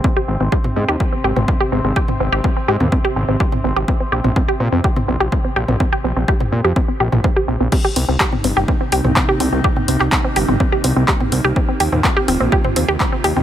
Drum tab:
CC |----------------|----------------|----------------|----------------|
HH |----------------|----------------|----------------|----------------|
CP |----------------|----------------|----------------|----------------|
T2 |-----o-----o----|-o-----o-----o--|---o-----o-----o|-----o-----o----|
BD |o---o---o---o---|o---o---o---o---|o---o---o---o---|o---o---o---o---|

CC |x---------------|----------------|----------------|
HH |--o---o---o---o-|--o---o---o---o-|--o---o---o---o-|
CP |----x-------x---|---xx-------x---|----x-------x---|
T2 |-----o-----o----|-o-----o-----o--|---o-----o-----o|
BD |o---o---o---o---|o---o---o---o---|o---o---o---o---|